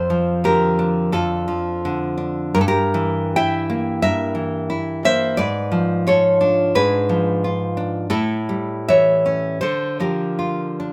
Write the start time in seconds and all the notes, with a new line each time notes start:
Already playing: F2 A4 C5
0.10 F3
0.44 D3 G4 A#4
0.79 D4
1.12 F2 F4 A4
1.48 F3
1.85 D3
2.17 D4
2.55 G2 A#4
2.61 A4
2.68 G4 A#4
2.94 E3
3.36 E4 E5 G5
3.70 A#3
4.02 G2 A#4 E5
4.35 E3
4.70 E4
5.05 A#3 C5 E5
5.37 G#2 B4 D5
5.72 F3
6.07 F4 A4 C#5
6.41 D4
6.75 G#2 G#4 B4
7.09 F3
7.44 F4
7.77 D4
8.10 A2 E4 A4
8.49 G3
8.88 E3 C#5 E5
9.26 C#4
9.61 D3 A4 C5
10.00 F3 G4 A#4
10.39 F4
10.80 D4